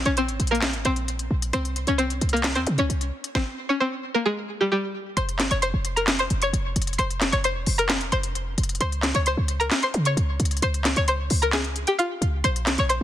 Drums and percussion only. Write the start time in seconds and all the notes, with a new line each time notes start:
0.05 closed hi-hat
0.17 closed hi-hat
0.28 closed hi-hat
0.40 closed hi-hat
0.47 closed hi-hat
0.55 closed hi-hat
0.62 snare, clap, closed hi-hat
0.73 closed hi-hat
0.85 closed hi-hat
0.96 closed hi-hat
1.08 closed hi-hat
1.19 closed hi-hat
1.42 closed hi-hat
1.53 closed hi-hat
1.65 closed hi-hat
1.76 closed hi-hat
1.87 closed hi-hat
1.99 closed hi-hat
2.10 closed hi-hat
2.21 closed hi-hat
2.29 closed hi-hat
2.37 closed hi-hat
2.44 snare, clap, closed hi-hat
2.55 closed hi-hat
2.67 closed hi-hat
2.78 closed hi-hat
2.90 closed hi-hat
3.01 closed hi-hat
3.24 closed hi-hat
3.35 kick, snare
5.17 closed hi-hat
5.29 closed hi-hat
5.39 snare, clap, closed hi-hat
5.51 closed hi-hat
5.62 closed hi-hat
5.85 closed hi-hat
5.97 closed hi-hat
6.07 snare, clap, closed hi-hat
6.19 closed hi-hat
6.30 closed hi-hat
6.42 closed hi-hat
6.54 closed hi-hat
6.76 closed hi-hat
6.82 closed hi-hat
6.87 closed hi-hat
6.93 closed hi-hat
6.99 closed hi-hat
7.11 closed hi-hat
7.21 snare, clap, closed hi-hat
7.33 closed hi-hat
7.44 closed hi-hat
7.66 open hi-hat
7.79 closed hi-hat
7.89 snare, clap, closed hi-hat
8.01 closed hi-hat
8.12 closed hi-hat
8.23 closed hi-hat
8.35 closed hi-hat
8.58 closed hi-hat
8.63 closed hi-hat
8.69 closed hi-hat
8.75 closed hi-hat
8.81 closed hi-hat
8.92 closed hi-hat
9.03 snare, clap, closed hi-hat
9.14 closed hi-hat
9.26 closed hi-hat
9.48 closed hi-hat
9.61 closed hi-hat
9.71 snare, clap, closed hi-hat
9.83 closed hi-hat
9.94 closed hi-hat
10.05 closed hi-hat
10.17 closed hi-hat
10.40 closed hi-hat
10.45 closed hi-hat
10.51 closed hi-hat
10.57 closed hi-hat
10.62 closed hi-hat
10.74 closed hi-hat
10.85 snare, clap, closed hi-hat
10.96 closed hi-hat
11.08 closed hi-hat
11.30 open hi-hat
11.42 closed hi-hat
11.53 snare, clap, closed hi-hat
11.64 closed hi-hat
11.76 closed hi-hat
11.87 closed hi-hat
11.99 closed hi-hat
12.22 closed hi-hat
12.44 closed hi-hat
12.56 closed hi-hat
12.66 snare, clap, closed hi-hat
12.78 closed hi-hat
12.90 closed hi-hat